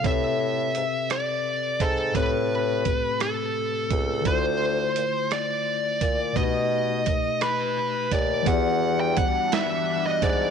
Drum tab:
HH |x-xx-x|x-xx-x|x-xx-x|x-xx-x|
SD |---r--|---r--|---r--|---r--|
BD |o----o|o-o--o|o----o|o-o--o|

HH |x-xx-x|
SD |---o--|
BD |o-o--o|